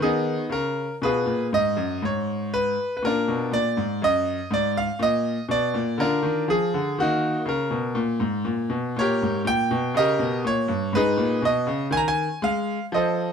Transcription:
0.00 0.35 D#3 medium
0.00 0.48 B3 medium
0.00 0.48 D#4 medium
0.00 0.43 G#4 medium
0.50 0.86 C#3 medium
0.50 0.94 A#4 medium
1.02 1.25 B2 medium
1.02 1.49 F4 medium
1.02 1.49 G#4 medium
1.02 1.45 B4 medium
1.26 1.49 A#2 medium
1.53 1.76 G#2 medium
1.53 2.03 D#5 loud
1.77 2.01 F#2 medium
2.02 2.74 G#2 medium
2.02 2.54 C#5 medium
2.54 2.95 B4 loud
2.97 3.03 B4 medium
3.02 3.26 A#2 medium
3.02 3.50 D4 medium
3.02 3.50 F4 medium
3.02 3.53 A#4 loud
3.28 3.51 B2 medium
3.52 3.75 A#2 medium
3.52 4.02 D5 loud
3.77 4.01 G#2 medium
4.02 4.38 F#2 medium
4.02 4.53 D#5 loud
4.51 4.86 G#2 medium
4.51 4.77 D5 loud
4.77 5.01 F5 loud
4.99 5.35 A#2 medium
4.99 5.44 D#5 loud
5.49 5.73 B2 medium
5.49 6.01 D5 loud
5.74 5.98 A#2 medium
5.98 6.23 D3 medium
5.98 6.47 D4 medium
5.98 6.47 F4 medium
5.98 6.43 A#4 loud
6.23 6.47 D#3 medium
6.48 6.73 F3 medium
6.48 6.99 G#4 loud
6.74 6.98 D3 medium
6.98 7.34 D#3 medium
6.98 7.46 A#3 medium
6.98 7.46 D#4 medium
6.98 7.41 F#4 loud
7.46 7.70 C#3 medium
7.46 7.97 A#4 medium
7.71 7.95 B2 medium
7.95 8.19 A#2 medium
8.20 8.44 G#2 medium
8.45 8.69 A#2 medium
8.70 8.94 B2 medium
8.97 9.20 A#2 medium
8.97 9.45 A#4 medium
8.97 9.40 C#5 loud
9.01 9.45 G4 medium
9.22 9.45 G#2 medium
9.45 9.69 A#2 medium
9.45 9.95 G5 loud
9.71 9.94 B2 medium
9.94 10.17 C#3 medium
9.94 10.41 G4 medium
9.94 10.44 D#5 loud
9.99 10.41 A#4 medium
10.19 10.42 B2 medium
10.45 10.66 A#2 medium
10.45 10.93 C#5 loud
10.68 10.90 G2 medium
10.93 11.15 G#2 medium
10.93 11.40 D#4 medium
10.93 11.40 G#4 medium
10.93 11.42 B4 loud
11.17 11.40 A#2 medium
11.42 11.65 B2 medium
11.42 11.86 D#5 loud
11.67 11.90 C#3 medium
11.91 12.26 D#3 medium
11.91 11.98 G#5 loud
11.97 12.04 A#5 loud
12.08 12.42 G#5 loud
12.42 12.77 G#3 medium
12.42 12.84 F5 loud
12.92 13.27 F3 medium
12.92 13.33 A4 medium
12.92 13.33 C5 medium
12.92 13.33 D#5 medium

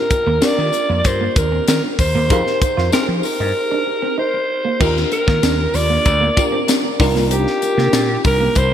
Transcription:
0.00 0.19 D4 medium
0.00 0.19 F4 medium
0.00 0.20 G4 medium
0.00 0.20 A#4 medium
0.00 0.45 A#4 medium
0.10 muted clean electric guitar stroke soft
0.10 kick medium
0.10 closed hi-hat medium
0.27 0.38 D#2 medium
0.27 0.40 A#3 medium
0.41 1.22 D4 medium
0.41 0.56 D4 medium
0.41 1.23 F4 medium
0.41 1.23 G4 medium
0.41 1.23 A#4 medium
0.41 1.08 D5 medium
0.41 snare loud
0.41 closed hi-hat medium
0.41 tambourine medium
0.58 0.69 D#3 medium
0.73 muted clean electric guitar stroke soft
0.73 closed hi-hat medium
0.73 tambourine soft
0.89 1.01 F2 medium
0.89 1.02 A#3 medium
1.04 1.27 G2 medium
1.04 1.40 C5 medium
1.04 kick medium
1.04 closed hi-hat medium
1.04 tambourine soft
1.21 1.34 A#3 medium
1.36 1.58 D#2 medium
1.36 1.69 A#4 medium
1.36 muted clean electric guitar stroke soft
1.36 kick medium
1.36 closed hi-hat medium
1.36 tambourine soft
1.52 1.65 C4 medium
1.68 1.79 D#3 medium
1.68 1.81 D4 medium
1.68 1.83 A#4 medium
1.68 snare loud
1.68 closed hi-hat medium
1.68 tambourine medium
1.84 muted clean electric guitar stroke soft
1.99 2.10 D#2 medium
1.99 2.58 C5 medium
1.99 kick medium
1.99 open hi-hat medium
1.99 tambourine soft
2.15 2.30 D#2 medium
2.15 2.28 A#3 medium
2.30 2.41 F2 loud
2.30 2.70 D#4 medium
2.30 2.43 F4 medium
2.30 2.71 G4 medium
2.30 2.71 G#4 medium
2.30 2.71 A#4 medium
2.30 kick loud
2.30 closed hi-hat medium
2.30 tambourine soft
2.47 snare soft
2.62 2.91 C5 medium
2.62 muted clean electric guitar stroke soft
2.62 kick medium
2.62 closed hi-hat medium
2.62 tambourine soft
2.77 2.89 F2 medium
2.77 2.90 F4 medium
2.77 snare soft
2.92 3.73 D#4 medium
2.92 3.73 G4 medium
2.92 3.06 G4 medium
2.92 3.73 G#4 medium
2.92 3.07 A#4 medium
2.92 3.74 C5 medium
2.92 snare loud
2.92 closed hi-hat medium
2.92 tambourine medium
3.09 3.20 F3 medium
3.23 4.14 A#4 medium
3.23 muted clean electric guitar stroke soft
3.23 open hi-hat medium
3.23 tambourine soft
3.40 3.51 G2 medium
3.40 3.53 D#4 medium
3.71 3.84 D4 medium
3.87 muted clean electric guitar stroke soft
4.02 4.16 C4 medium
4.18 4.31 D#4 medium
4.18 4.83 C5 medium
4.34 muted clean electric guitar stroke soft
4.65 4.78 A#3 medium
4.80 5.03 D#2 medium
4.80 5.61 D4 medium
4.80 4.94 D#4 medium
4.80 5.61 F4 medium
4.80 5.61 G4 medium
4.80 5.61 A#4 medium
4.80 5.12 A#4 medium
4.80 kick loud
4.80 crash medium
4.80 tambourine soft
4.97 snare soft
5.12 5.77 A#4 medium
5.12 muted clean electric guitar stroke soft
5.12 closed hi-hat medium
5.12 tambourine soft
5.27 5.39 D#3 medium
5.27 5.40 A#3 medium
5.27 kick medium
5.27 snare soft
5.43 5.66 D#2 medium
5.43 5.56 D4 medium
5.43 snare loud
5.43 closed hi-hat medium
5.43 tambourine medium
5.74 5.97 D#2 medium
5.74 7.00 D5 loud
5.74 muted clean electric guitar stroke soft
5.74 open hi-hat medium
5.74 tambourine soft
5.90 6.03 A#3 medium
6.05 6.28 D2 medium
6.05 kick medium
6.05 closed hi-hat medium
6.05 tambourine soft
6.21 6.34 A#3 medium
6.36 6.77 D4 medium
6.36 6.77 F4 medium
6.36 6.78 G4 medium
6.36 6.78 A#4 medium
6.36 muted clean electric guitar stroke soft
6.36 kick medium
6.36 closed hi-hat medium
6.36 tambourine soft
6.52 6.66 C4 medium
6.68 6.81 D4 medium
6.68 snare loud
6.68 closed hi-hat medium
6.68 tambourine medium
6.84 muted clean electric guitar stroke soft
7.00 7.45 C2 medium
7.00 8.00 D4 medium
7.00 8.00 D#4 medium
7.00 8.00 F4 medium
7.00 8.00 A#4 loud
7.00 kick loud
7.00 open hi-hat medium
7.00 tambourine soft
7.15 7.28 A#3 medium
7.15 snare soft
7.31 7.44 C4 medium
7.31 8.21 G4 medium
7.31 closed hi-hat medium
7.47 snare soft
7.62 muted clean electric guitar stroke soft
7.62 closed hi-hat medium
7.62 tambourine soft
7.78 7.89 C3 medium
7.78 7.91 A#3 medium
7.78 snare soft
7.93 8.16 A#2 medium
7.93 8.07 D4 medium
7.93 snare loud
7.93 closed hi-hat medium
7.93 tambourine medium
8.24 8.47 C2 medium
8.24 8.59 A#4 medium
8.24 muted clean electric guitar stroke soft
8.24 kick medium
8.24 open hi-hat medium
8.24 tambourine soft
8.41 8.54 A#3 medium
8.55 8.74 C2 medium
8.55 8.74 C5 loud
8.55 kick medium
8.55 closed hi-hat medium
8.55 tambourine soft

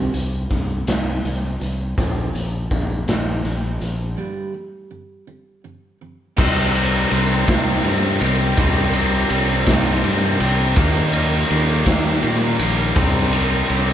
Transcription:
0.00 0.11 C3 medium
0.00 0.11 D#3 medium
0.00 0.12 G3 medium
0.13 0.47 C2 medium
0.13 0.46 C3 medium
0.13 0.47 D#3 medium
0.13 closed hi-hat medium
0.50 0.83 C2 medium
0.50 0.83 C3 medium
0.50 0.84 D#3 medium
0.50 kick medium
0.50 closed hi-hat medium
0.87 1.20 C2 medium
0.87 1.20 C3 medium
0.87 1.20 D#3 medium
0.87 snare medium
0.87 closed hi-hat medium
1.24 1.57 C2 medium
1.24 1.57 C3 medium
1.24 1.57 D#3 medium
1.24 closed hi-hat medium
1.61 1.94 C2 medium
1.61 1.94 C3 medium
1.61 1.94 D#3 medium
1.61 closed hi-hat medium
1.98 2.30 A#1 medium
1.98 2.32 A#2 medium
1.98 2.33 D3 medium
1.98 2.33 A#3 medium
1.98 kick loud
1.98 closed hi-hat medium
2.33 2.67 A#1 medium
2.33 2.67 A#2 medium
2.33 2.67 D3 medium
2.33 closed hi-hat medium
2.70 3.04 A#1 medium
2.70 3.04 A#2 medium
2.70 3.04 D3 medium
2.70 kick medium
2.70 closed hi-hat medium
3.07 3.41 A#1 medium
3.07 3.40 A#2 medium
3.07 3.41 D3 medium
3.07 snare loud
3.07 closed hi-hat medium
3.44 3.77 A#1 medium
3.44 3.77 A#2 medium
3.44 3.77 D3 medium
3.44 closed hi-hat soft
3.80 4.14 A#1 medium
3.80 4.14 A#2 medium
3.80 4.14 D3 medium
3.80 closed hi-hat medium
4.17 4.52 G2 medium
4.17 4.52 D3 medium
4.17 4.52 G3 medium
4.54 4.87 G2 medium
4.54 4.87 D3 medium
4.91 5.24 G2 medium
4.91 5.24 D3 medium
5.27 5.61 G2 medium
5.27 5.61 D3 medium
5.64 5.97 G2 medium
5.64 5.98 D3 medium
6.01 6.34 G2 medium
6.01 6.34 D3 medium
6.38 7.04 C2 loud
6.38 7.11 C3 medium
6.38 6.77 G3 medium
6.38 6.76 C4 medium
6.38 6.74 D#4 medium
6.38 kick loud
6.38 crash loud
6.75 7.12 G3 medium
6.75 7.13 C4 medium
6.75 7.14 D#4 medium
6.75 ride medium
7.11 7.44 C2 medium
7.11 7.83 C3 medium
7.11 7.50 G3 medium
7.11 7.48 C4 medium
7.11 7.47 D#4 medium
7.11 ride medium
7.47 7.81 C2 loud
7.47 8.56 C3 medium
7.47 7.85 G3 medium
7.47 7.85 C4 medium
7.47 7.87 D#4 medium
7.47 kick medium
7.47 snare loud
7.47 ride loud
7.84 8.18 G2 medium
7.84 8.56 C3 medium
7.84 8.23 G3 medium
7.84 8.21 C4 medium
7.84 8.20 D#4 medium
7.84 ride medium
8.21 8.54 C2 loud
8.21 8.58 G3 medium
8.21 8.59 C4 medium
8.21 8.60 D#4 medium
8.21 ride medium
8.57 9.23 C2 loud
8.57 9.29 C3 medium
8.57 8.97 G3 loud
8.57 8.95 C4 medium
8.57 8.94 D#4 loud
8.57 kick loud
8.57 ride loud
8.94 9.32 C4 medium
8.94 9.33 D#4 medium
8.94 ride medium
8.98 9.31 G3 medium
9.30 9.63 C2 medium
9.30 10.02 C3 medium
9.30 9.70 G3 medium
9.30 9.67 C4 medium
9.30 9.67 D#4 medium
9.30 ride medium
9.66 10.00 C2 medium
9.66 10.76 C3 medium
9.66 10.04 G3 medium
9.66 10.04 C4 medium
9.66 10.06 D#4 medium
9.66 kick medium
9.66 snare loud
9.66 ride loud
10.03 10.36 G2 medium
10.03 10.75 C3 medium
10.03 10.43 G3 medium
10.03 10.40 C4 medium
10.03 10.39 D#4 medium
10.03 ride medium
10.39 10.73 C2 medium
10.39 10.76 G3 medium
10.39 10.75 C4 medium
10.39 10.78 D#4 medium
10.39 ride medium
10.75 11.43 D#2 loud
10.75 11.48 D#3 medium
10.75 11.16 G3 medium
10.75 11.14 A#3 loud
10.75 11.12 D#4 loud
10.75 kick loud
10.75 ride loud
11.13 11.50 G3 medium
11.13 11.51 A#3 medium
11.13 11.52 D#4 medium
11.13 ride medium
11.49 11.83 D#2 medium
11.49 12.21 D#3 medium
11.49 11.88 G3 medium
11.49 11.86 A#3 medium
11.49 11.84 D#4 medium
11.49 ride medium
11.85 12.20 D#2 medium
11.85 12.95 D#3 medium
11.85 12.23 G3 medium
11.85 12.23 A#3 medium
11.85 12.24 D#4 medium
11.85 kick medium
11.85 snare loud
11.85 ride loud
12.22 12.56 A#2 medium
12.22 12.94 D#3 medium
12.22 12.62 G3 medium
12.22 12.60 A#3 medium
12.22 12.58 D#4 medium
12.22 ride medium
12.59 12.93 A#1 medium
12.59 12.96 G3 medium
12.59 12.95 A#3 medium
12.59 12.94 D#4 medium
12.59 ride medium
12.95 13.62 C2 loud
12.95 13.67 C3 medium
12.95 13.34 G3 medium
12.95 13.32 C4 loud
12.95 13.30 D#4 loud
12.95 kick loud
12.95 ride loud
13.32 13.69 G3 medium
13.32 13.70 C4 medium
13.32 13.71 D#4 medium
13.32 ride medium
13.68 13.93 C2 medium
13.68 13.93 C3 medium
13.68 13.93 G3 medium
13.68 13.93 C4 medium
13.68 13.93 D#4 medium
13.68 ride medium

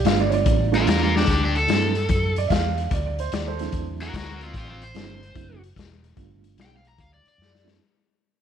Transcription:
0.05 0.44 G1 medium
0.05 0.68 G3 medium
0.05 0.68 A3 medium
0.05 0.68 B3 medium
0.05 0.68 D4 medium
0.05 0.68 F4 medium
0.05 0.19 F5 medium
0.05 snare loud
0.05 closed hi-hat medium
0.20 0.32 D5 medium
0.29 0.33 C#5 medium
0.29 closed hi-hat medium
0.33 0.68 D5 medium
0.46 0.85 A1 medium
0.46 kick loud
0.46 closed hi-hat medium
0.72 1.25 G3 medium
0.72 1.24 A3 medium
0.72 1.25 B3 medium
0.72 1.24 D4 medium
0.72 1.25 F4 medium
0.72 0.87 F4 medium
0.72 closed hi-hat medium
0.77 0.87 A#4 medium
0.87 1.26 E2 medium
0.87 1.00 F4 medium
0.87 1.01 A#4 medium
0.87 snare loud
0.87 closed hi-hat medium
1.03 1.14 F4 medium
1.03 1.15 A#4 medium
1.16 1.28 D4 medium
1.16 1.29 G4 medium
1.16 snare medium
1.25 1.67 D2 medium
1.25 kick medium
1.25 snare medium
1.25 closed hi-hat medium
1.30 1.42 D4 medium
1.30 1.42 G4 medium
1.44 1.55 D4 medium
1.44 1.56 G4 medium
1.55 2.35 A4 medium
1.55 closed hi-hat medium
1.68 2.08 G2 medium
1.68 1.92 F#3 medium
1.68 1.92 A3 soft
1.68 1.93 C4 soft
1.68 1.93 D4 medium
1.68 1.93 E4 medium
1.68 snare loud
1.68 closed hi-hat medium
1.95 closed hi-hat medium
2.09 2.49 F#2 medium
2.09 kick loud
2.09 closed hi-hat medium
2.36 2.50 D5 medium
2.36 closed hi-hat medium
2.47 2.90 E2 medium
2.47 2.50 E5 medium
2.47 kick medium
2.47 closed hi-hat medium
2.51 2.90 F5 medium
2.51 snare loud
2.78 closed hi-hat medium
2.91 3.30 D2 medium
2.91 3.04 D5 medium
2.91 kick loud
2.91 closed hi-hat medium
3.06 3.18 D5 medium
3.19 3.32 C5 medium
3.19 closed hi-hat medium
3.32 3.72 D#2 medium
3.32 3.46 D5 medium
3.32 snare loud
3.32 closed hi-hat medium
3.47 3.84 A4 medium
3.47 3.86 C5 medium
3.59 4.11 F#3 medium
3.59 4.11 A3 medium
3.59 4.11 C4 medium
3.59 4.11 D4 medium
3.59 4.11 E4 medium
3.59 snare soft
3.59 closed hi-hat medium
3.72 4.12 E2 medium
3.72 kick loud
3.72 closed hi-hat medium
4.00 4.14 F#4 medium
4.00 4.14 A#4 medium
4.00 closed hi-hat medium
4.14 4.53 D2 medium
4.14 4.27 F#4 medium
4.14 4.28 A#4 medium
4.14 kick medium
4.14 snare loud
4.14 closed hi-hat medium
4.30 4.41 F#4 medium
4.30 4.41 A#4 medium
4.41 4.54 C4 medium
4.41 4.54 F4 medium
4.41 closed hi-hat medium
4.54 4.93 A1 medium
4.54 4.68 C4 medium
4.54 4.69 F4 medium
4.54 kick medium
4.54 closed hi-hat medium
4.70 4.81 C4 medium
4.70 4.82 F4 medium
4.82 5.61 C5 medium
4.82 closed hi-hat medium
4.94 5.34 G1 medium
4.94 5.19 F#3 medium
4.94 5.19 A3 medium
4.94 5.19 C4 medium
4.94 5.19 D4 medium
4.94 5.19 E4 medium
4.94 snare loud
4.94 closed hi-hat medium
5.23 closed hi-hat medium
5.35 5.75 F#1 medium
5.35 5.59 F#3 medium
5.35 5.60 A3 soft
5.35 5.60 C4 medium
5.35 5.60 D4 soft
5.35 5.60 E4 medium
5.35 kick loud
5.35 closed hi-hat medium
5.64 closed hi-hat medium
5.76 6.16 E1 medium
5.76 kick medium
5.76 snare loud
5.76 closed hi-hat medium
6.04 closed hi-hat medium
6.16 6.56 G1 medium
6.16 6.79 G3 medium
6.16 6.79 A3 soft
6.16 6.79 B3 soft
6.16 6.79 D4 medium
6.16 6.79 F4 medium
6.16 kick loud
6.16 closed hi-hat medium
6.44 closed hi-hat medium
6.58 6.97 B1 medium
6.58 snare loud
6.58 closed hi-hat medium
6.62 6.73 G5 loud
6.76 6.87 F5 medium
6.85 7.00 A#5 medium
6.85 closed hi-hat medium
6.98 7.24 D2 medium
6.98 7.12 F5 medium
6.98 kick loud
6.98 closed hi-hat medium
7.14 7.26 D5 medium
7.25 7.67 D5 medium
7.25 muted fingered electric bass stroke soft
7.25 closed hi-hat medium
7.38 7.78 F#2 medium
7.38 snare medium
7.55 snare medium
7.64 7.79 F#3 medium
7.64 7.79 A3 medium
7.64 7.80 C4 medium
7.64 7.79 D4 medium
7.64 7.79 E4 medium
7.64 snare medium

